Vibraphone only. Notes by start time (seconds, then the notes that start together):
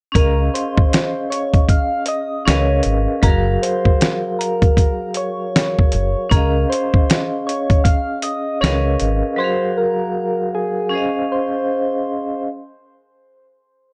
0.13 C#4 G#4
0.19 D#5 F5
2.45 C#4 G#4 A#4 B4 D#5
2.50 F5
3.21 F#3 F#4 G#4
3.27 A#4 F5
6.29 C#4 G#4
6.35 D#5 F5
8.61 C#4 G#4 A#4 B4 D#5 F5
9.36 F#3 F#4 G#4
9.42 A#4 F5
10.89 C#4 G#4
10.94 C5 D#5 F5